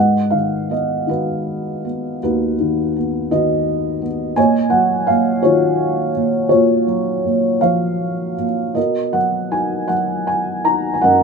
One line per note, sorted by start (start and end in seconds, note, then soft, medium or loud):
0.00 2.19 G#2 soft
0.00 1.05 B4 soft
0.00 0.70 D#5 soft
0.00 0.33 F#5 medium
0.30 1.05 D#3 soft
0.30 0.71 F5 medium
0.70 1.83 B3 soft
0.70 1.10 D#5 medium
1.07 2.55 D#3 soft
1.07 2.19 D#4 soft
1.07 2.19 F#4 soft
1.07 2.21 B4 medium
1.85 2.95 B3 soft
2.23 4.33 D#2 medium
2.23 3.28 D#4 soft
2.23 3.28 F#4 soft
2.23 3.27 B4 medium
2.60 3.30 D#3 soft
2.96 4.00 B3 soft
3.31 4.33 D#3 soft
3.31 4.33 F#4 soft
3.31 4.33 B4 soft
3.31 4.06 D#5 medium
4.01 4.36 B3 soft
4.36 5.07 A#2 medium
4.36 5.40 C#5 medium
4.36 5.40 D#5 medium
4.36 4.70 G#5 medium
4.70 6.11 F#3 soft
4.70 5.08 F#5 medium
5.07 6.14 A#2 soft
5.07 5.41 F5 medium
5.43 6.85 D#3 soft
5.43 6.48 F4 soft
5.43 6.48 F#4 soft
5.43 6.48 C#5 medium
6.15 6.50 A#2 soft
6.49 7.23 A#2 soft
6.49 7.58 F4 soft
6.49 7.58 F#4 soft
6.49 7.57 C#5 medium
6.88 8.34 F#3 soft
7.24 8.36 A#2 soft
7.61 8.73 F3 soft
7.61 8.72 C#5 soft
7.61 8.43 F5 medium
8.38 8.75 A#2 soft
8.75 10.98 B2 soft
8.75 9.86 F#4 soft
8.75 9.86 A#4 soft
8.75 9.15 D#5 medium
9.13 9.87 F#3 soft
9.13 9.53 F#5 medium
9.51 10.64 D#4 soft
9.51 9.91 G#5 medium
9.88 11.23 F#3 soft
9.88 10.27 F#5 medium
10.27 10.62 G#5 medium
10.65 11.23 D#4 soft
10.65 10.94 A#5 medium
10.94 11.02 G#5 medium
11.02 11.23 F#2 soft
11.02 11.23 A#4 medium
11.02 11.23 D#5 medium
11.02 11.23 F#5 medium